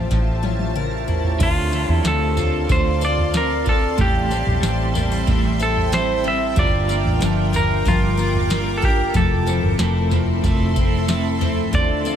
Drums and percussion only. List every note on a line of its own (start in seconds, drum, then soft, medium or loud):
0.11 kick medium
0.11 snare medium
0.43 high tom medium
0.59 high tom medium
0.76 mid tom medium
1.08 floor tom medium
1.24 floor tom medium
1.40 kick loud
1.40 floor tom loud
1.40 crash loud
1.40 tambourine medium
1.73 tambourine medium
1.89 floor tom medium
2.05 snare loud
2.05 tambourine loud
2.37 floor tom medium
2.37 tambourine medium
2.69 kick medium
2.69 floor tom medium
2.69 tambourine medium
3.02 tambourine medium
3.18 floor tom medium
3.34 snare loud
3.34 tambourine medium
3.67 kick medium
3.98 kick loud
3.98 floor tom loud
3.98 tambourine medium
4.31 tambourine medium
4.47 floor tom medium
4.63 snare loud
4.63 tambourine loud
4.95 floor tom medium
4.95 tambourine medium
5.28 kick medium
5.28 floor tom medium
5.28 tambourine medium
5.60 tambourine medium
5.77 floor tom medium
5.93 snare loud
5.93 tambourine medium
6.57 kick loud
6.57 floor tom loud
6.57 tambourine medium
6.89 tambourine medium
7.06 floor tom medium
7.22 snare loud
7.22 tambourine loud
7.54 floor tom medium
7.54 tambourine medium
7.86 kick medium
7.86 floor tom medium
7.86 tambourine medium
8.19 tambourine medium
8.35 floor tom medium
8.50 snare loud
8.50 tambourine medium
8.83 kick medium
9.14 kick loud
9.14 floor tom loud
9.14 tambourine medium
9.47 tambourine medium
9.63 floor tom medium
9.79 snare loud
9.79 tambourine loud
10.11 floor tom medium
10.11 tambourine medium
10.44 kick medium
10.44 floor tom medium
10.44 tambourine medium
10.76 kick medium
10.76 tambourine medium
11.08 snare loud
11.08 tambourine medium
11.41 floor tom medium
11.73 kick loud
11.73 floor tom loud
11.73 tambourine medium
12.06 tambourine medium